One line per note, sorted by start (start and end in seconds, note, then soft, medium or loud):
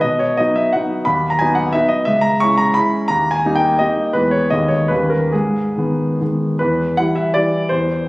0.01 0.37 B2 soft
0.01 0.19 D#5 medium
0.19 0.38 C#5 medium
0.37 0.71 F#3 soft
0.37 0.72 B3 soft
0.37 0.72 D#4 soft
0.37 0.56 D#5 medium
0.56 0.74 E5 medium
0.73 1.04 F#3 soft
0.73 1.04 B3 soft
0.73 1.04 D#4 soft
0.73 1.06 F#5 medium
1.05 1.39 D#2 soft
1.05 1.30 B5 medium
1.30 1.39 A#5 medium
1.39 1.71 F#3 soft
1.39 1.71 B3 soft
1.39 1.71 D#4 soft
1.39 1.57 G#5 medium
1.55 1.73 F#5 medium
1.73 2.04 F#3 soft
1.73 2.04 B3 soft
1.73 2.04 D#4 soft
1.73 1.90 E5 medium
1.89 2.06 D#5 medium
2.05 2.41 C#2 medium
2.05 2.23 E5 medium
2.21 2.40 A#5 medium
2.40 2.73 G#3 soft
2.40 2.73 C#4 soft
2.40 2.73 E4 medium
2.40 2.59 C#6 medium
2.58 2.75 A#5 medium
2.74 3.06 G#3 soft
2.74 3.06 C#4 soft
2.74 3.07 E4 soft
2.74 3.09 B5 medium
3.08 3.44 D#2 medium
3.08 3.32 A#5 medium
3.31 3.57 G#5 medium
3.46 3.77 G3 soft
3.46 3.78 A#3 soft
3.46 3.78 D#4 medium
3.55 3.80 G5 medium
3.79 4.12 G3 soft
3.79 4.12 A#3 soft
3.79 4.12 D#4 soft
3.79 4.14 D#5 medium
4.13 4.50 E2 soft
4.13 4.48 G#3 soft
4.13 4.48 B3 soft
4.13 4.32 B4 medium
4.31 4.51 C#5 medium
4.50 4.89 D#2 soft
4.50 4.87 D#3 soft
4.50 4.87 G#3 soft
4.50 4.88 B3 soft
4.50 4.70 D#5 medium
4.68 4.90 C#5 medium
4.88 5.31 D#2 soft
4.88 5.29 D#3 soft
4.88 5.29 G3 soft
4.88 5.29 C#4 soft
4.88 5.10 B4 medium
5.10 5.32 A#4 medium
5.32 5.76 G#2 soft
5.32 6.20 G#4 medium
5.77 6.17 D#3 soft
5.77 6.17 G#3 soft
5.77 6.18 B3 soft
6.21 6.57 D#3 soft
6.21 6.57 G#3 soft
6.21 6.57 B3 soft
6.59 6.97 E2 soft
6.59 6.97 B4 medium
6.97 7.32 E3 soft
6.97 7.32 G3 soft
6.97 7.33 E4 soft
6.97 7.17 F#5 medium
7.16 7.35 E5 medium
7.34 7.67 E3 soft
7.34 7.67 G3 soft
7.34 7.67 E4 soft
7.34 7.70 D5 medium
7.69 8.05 E2 soft
7.69 8.08 C5 medium